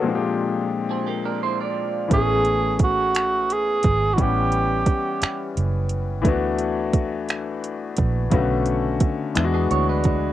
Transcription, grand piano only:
<<
  \new Staff \with { instrumentName = "Grand piano" } { \time 6/8 \key a \major \tempo 4. = 58 a'16 r2 r8. | r2. | r2. | r2. |
r2. | }
  \new Staff \with { instrumentName = "Grand piano" } { \time 6/8 \key a \major <bes, f aes c' d' fis' g'>2. | <e a b cis' gis'>2. | <e g b cis' fis''>2. | <e a b d' fis'>2. |
<cis d a b cis' fis'>4. <e gis b d' e' fis'>4. | }
>>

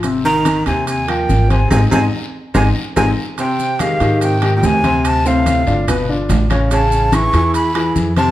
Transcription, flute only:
\new Staff \with { instrumentName = "Flute" } { \time 4/4 \key aes \major \tempo 4 = 144 r8 bes''4 aes''8 aes''8 g''4 aes''8 | aes''8 aes''8 r4 aes''8 r8 aes''8 r8 | g''4 f''4 \tuplet 3/2 { g''4~ g''16 g''16 } aes''4 | a''8 f''4. r2 |
a''4 cis'''4 b''4 r8 a''8 | }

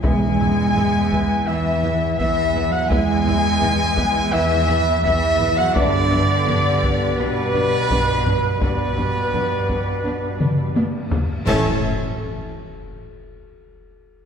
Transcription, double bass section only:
\new Staff \with { instrumentName = "Double bass section" } { \clef bass \time 4/4 \key e \mixolydian \tempo 4 = 84 e,4 e,4 e,4 e,4 | e,4 e,4 e,4 e,4 | g,4 g,4 g,4 g,4 | g,4 g,4 g,4 g,4 |
a,,8 r2. r8 | }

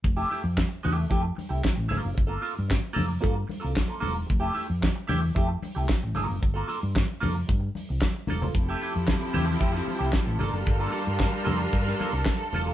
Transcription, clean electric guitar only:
\new Staff \with { instrumentName = "Clean electric guitar" } { \time 4/4 \key f \major \tempo 4 = 113 r16 <a e' g'>16 <a e' g'>16 r8. <a e' g'>8 <a e' g'>16 r8 <a e' g'>16 r8 <bes f' a'>8 | r16 <bes f' a'>16 <bes f' a'>16 r8. <bes f' a'>16 r16 <bes f' a'>16 r8 <bes f' a'>16 r16 <bes f' a'>16 <bes f' a'>16 r16 | r16 <a e' g'>16 <a e' g'>16 r8. <a e' g'>16 r16 <a e' g'>16 r8 <a e' g'>16 r8 <bes f' a'>8 | r16 <bes f' a'>16 <bes f' a'>16 r8. <bes f' a'>16 r4. r16 <bes f' a'>16 <bes f' a'>16 |
r16 <a e' g'>16 <a e' g'>16 r8. <a e' g'>16 r16 <a e' g'>16 r8 <a e' g'>16 r8 <bes f' a'>16 r16 | r16 <bes f' a'>16 <bes f' a'>16 r8. <bes f' a'>16 r8. <bes f' a'>16 r8. <bes f' a'>16 <bes f' a'>16 | }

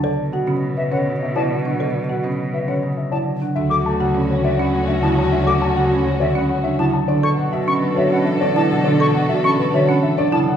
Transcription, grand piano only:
\new Staff \with { instrumentName = "Grand piano" } { \time 3/4 \key d \major \tempo 4 = 102 d''16 r16 fis''16 r8 b'16 cis''16 r16 e''16 d''16 r16 fis''16 | d''16 r16 fis''16 r8 b'16 cis''16 r16 e''16 d''16 r16 fis''16 | e''16 r16 a''16 fis''16 r16 cis''16 d''16 r16 fis''16 e''16 r16 a''16 | e''16 r16 a''16 fis''16 r16 cis''16 d''16 r16 fis''16 e''16 r16 a''16 |
d''16 r16 fis''16 e''16 r16 b'16 cis''16 r16 e''16 d''16 r16 fis''16 | d''16 r16 fis''16 e''16 r16 b'16 cis''16 r16 e''16 d''16 r16 fis''16 | }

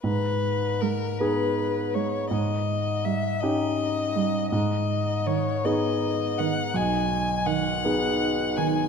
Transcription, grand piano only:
\new Staff \with { instrumentName = "Grand piano" } { \time 6/8 \key gis \minor \tempo 4. = 54 gis,4. <b dis' gis'>4. | gis,4. <cis' dis' g'>4. | gis,4. <b dis' gis'>4. | b,,4. <b dis' gis'>4. | }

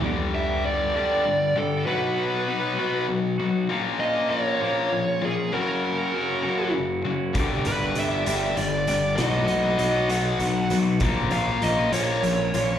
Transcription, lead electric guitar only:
\new Staff \with { instrumentName = "Lead electric guitar" } { \time 6/8 \key g \major \tempo 4. = 66 r8 e''8 d''4. a'8 | b'2 r4 | r8 dis''8 cis''4. gis'8 | ais'2 r4 |
r8 b'8 e''4 d''8 d''8 | dis''8 dis''8 dis''8 fis''4 r8 | r8 eis''8 dis''8 cis''4. | }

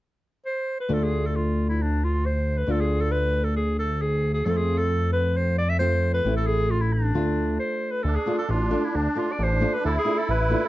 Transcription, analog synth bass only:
\new Staff \with { instrumentName = "Analog synth bass" } { \clef bass \time 2/4 \tempo 4 = 134 r2 | d,2~ | d,2 | d,2~ |
d,2 | f,2~ | f,2 | a,,2 |
d,4 r4 | d,8 r8 a,,4 | d,8 r8 a,,4 | d,8 r8 a,,4 | }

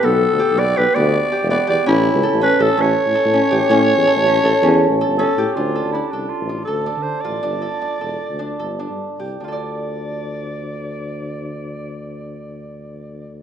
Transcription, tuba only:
\new Staff \with { instrumentName = "Tuba" } { \clef bass \time 5/4 \key d \dorian \tempo 4 = 160 b,,8. d,16 r16 b,,8. b,,16 r16 d,8. r8 e,,8 r16 e,16 r16 | a,,8. cis,16 r16 a,,8 r16 a,,16 r16 a,,8 r16 a,16 r16 a,8 r16 a,,16 r16 | a,8. e,16 r16 a,,8. a,,16 r16 e,8. a,,8 g,,8 r16 a,16 r16 | d,8. d,8 r16 c,8 r16 a,,8. d,8. d8 r16 a,,8 |
g,,8. r8. e,,8 r16 d,8. g,,8. g,8 r16 c,8 | d,1~ d,4~ | d,1~ d,4 | }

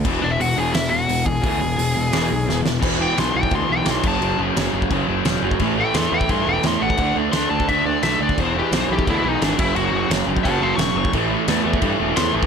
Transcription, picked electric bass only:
\new Staff \with { instrumentName = "Picked electric bass" } { \clef bass \time 4/4 \key e \mixolydian \tempo 4 = 173 e,,8 e,,8 e,,8 e,,8 e,,4 e,,8 e,,8 | d,8 e,,8 e,,8 e,,8 e,,8 b,,8 e,,8 e,,8 | e,,4 b,,8 b,,8 d,8 b,,8 b,,8 fis,,8 | fis,,8 fis,,8 fis,,8 fis,,8 fis,,8 fis,,8 e,,8 fis,,8 |
a,,4 e,8 e,8 g,8 e,,8 e,8 a,,8 | d,8 d,8 d,8 d,8 d,8 d,8 b,,8 d,8 | e,,4 b,,8 b,,8 d,8 b,,8 gis,,8 fis,,8 | fis,,8 fis,,8 fis,,8 fis,,8 fis,,8 fis,,8 e,,8 fis,,8 |
a,,4 e,8 e,8 g,8 e,,8 e,8 a,,8 | }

